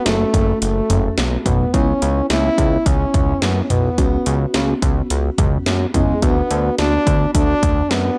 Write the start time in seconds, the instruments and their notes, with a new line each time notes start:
Already playing: fm electric piano A3 C#4 F#4
0.06 analog synth bass F#1, french horn A3, snare, closed hi-hat
0.34 analog synth bass F#1, kick, closed hi-hat
0.61 analog synth bass F#1, french horn A3, closed hi-hat
0.90 analog synth bass F#1, closed hi-hat, mid tom
1.18 analog synth bass B1, snare, closed hi-hat
1.46 analog synth bass B1, french horn B3, kick, closed hi-hat, mid tom
1.74 analog synth bass C#2, fm electric piano B3 C#4 E4, french horn C#4, kick, closed hi-hat
2.02 analog synth bass C#2, closed hi-hat
2.30 analog synth bass C#2, french horn E4, snare, closed hi-hat
2.58 analog synth bass C#2, kick, closed hi-hat
2.86 analog synth bass C#2, french horn C#4, kick, closed hi-hat
3.14 analog synth bass C#2, kick, closed hi-hat, mid tom
3.42 analog synth bass F#2, french horn B3, snare, closed hi-hat
3.63 french horn C#4
3.70 analog synth bass B1, french horn B3, closed hi-hat, mid tom
3.98 analog synth bass C#2, fm electric piano B3 C#4 F#4, kick, closed hi-hat
4.26 analog synth bass C#2, closed hi-hat
4.54 analog synth bass C#2, snare, closed hi-hat
4.82 analog synth bass C#2, kick, closed hi-hat
5.10 analog synth bass C#2, closed hi-hat
5.38 analog synth bass C#2, kick, closed hi-hat, mid tom
5.66 analog synth bass F#2, snare, closed hi-hat
5.94 analog synth bass C#2, french horn G#3, fm electric piano B3 C#4 E4, kick, closed hi-hat, mid tom
6.22 analog synth bass D2, fm electric piano B3 D4 F#4, french horn B3, kick, closed hi-hat
6.51 analog synth bass D2, closed hi-hat
6.78 analog synth bass D2, french horn D4, snare, closed hi-hat
7.07 analog synth bass D2, kick, closed hi-hat
7.35 analog synth bass D2, french horn D4, kick, closed hi-hat
7.63 analog synth bass D2, kick, closed hi-hat, mid tom
7.91 analog synth bass F#2, french horn B3, snare, closed hi-hat